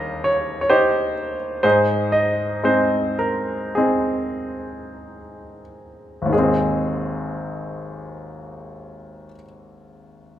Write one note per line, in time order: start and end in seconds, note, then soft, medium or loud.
0.00 1.60 D#2 soft
0.00 1.61 G3 soft
0.00 1.61 A#3 soft
0.00 0.70 D#4 soft
0.00 0.70 G4 soft
0.00 1.13 A#4 soft
0.00 0.70 C5 medium
0.00 1.67 D#5 medium
0.00 1.67 F5 medium
0.24 0.60 C#5 medium
0.61 0.69 C#5 soft
0.70 1.60 D#4 soft
0.70 1.60 G4 soft
0.70 1.36 C5 medium
1.63 6.29 G#2 soft
1.63 2.63 D#4 soft
1.63 3.71 G#4 soft
1.63 2.10 C5 medium
2.12 2.66 D#5 soft
2.63 6.28 G#3 soft
2.63 3.76 C4 soft
2.63 3.76 D#4 soft
2.63 3.15 C5 soft
3.19 3.71 A#4 soft
3.75 6.30 C4 soft
3.75 6.30 D#4 soft
3.75 5.62 G#4 soft
6.22 9.23 G#1 soft
6.22 9.27 D#2 soft
6.30 9.31 D#3 soft
6.30 9.34 G#4 soft
6.34 9.36 G#3 soft
6.38 9.40 C4 soft
6.43 9.44 D#4 soft